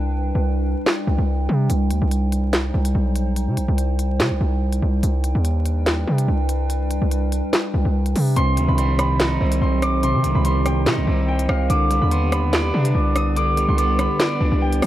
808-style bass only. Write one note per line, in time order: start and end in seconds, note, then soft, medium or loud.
0.00 0.32 C2 loud
0.35 0.75 C2 loud
1.07 1.18 C2 loud
1.18 1.48 C2 loud
1.49 1.69 C3 loud
1.70 1.92 C2 loud
1.91 2.01 D2 loud
2.02 2.71 C2 loud
2.74 2.94 C2 loud
2.95 3.49 B1 loud
3.47 3.59 C3 loud
3.57 3.68 B1 medium
3.68 4.21 C2 loud
4.20 4.32 C3 loud
4.31 4.40 C2 loud
4.41 4.81 C2 loud
4.82 5.02 C2 loud
5.03 5.34 C2 loud
5.35 6.04 D#2 loud
6.07 6.27 C3 loud
6.28 6.99 C2 loud
7.02 7.42 C2 loud
7.74 7.85 C2 loud
7.85 8.14 C2 loud
8.16 8.36 C3 loud
8.36 8.59 C2 loud
8.57 8.68 D2 loud
8.68 9.38 C2 loud
9.41 9.61 C2 loud
9.61 10.16 B1 loud
10.14 10.25 C3 loud
10.24 10.34 B1 loud
10.35 10.88 C2 loud
10.86 10.99 C3 loud
10.97 11.07 C2 loud
11.07 11.47 C2 loud
11.49 11.69 C2 loud
11.70 12.00 C2 loud
12.02 12.71 D#2 loud
12.74 12.94 C3 loud
12.95 13.65 C2 loud
13.68 14.08 C2 loud
14.41 14.51 C2 loud
14.52 14.81 C2 loud
14.82 14.87 C3 loud